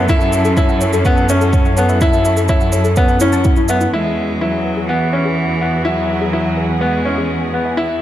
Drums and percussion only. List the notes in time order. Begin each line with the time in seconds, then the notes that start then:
0.09 kick, shaker
0.21 shaker
0.33 shaker
0.45 shaker
0.57 kick, shaker
0.69 shaker
0.81 shaker
0.93 shaker
1.05 kick, shaker
1.17 shaker
1.29 shaker
1.41 shaker
1.53 kick, shaker
1.65 shaker
1.77 shaker
1.89 shaker
2.01 kick, shaker
2.13 shaker
2.25 shaker
2.37 shaker
2.48 kick, shaker
2.61 shaker
2.72 shaker
2.84 shaker
2.96 kick, shaker
3.08 shaker
3.20 shaker
3.32 shaker
3.44 kick, shaker
3.56 shaker
3.68 shaker
3.81 shaker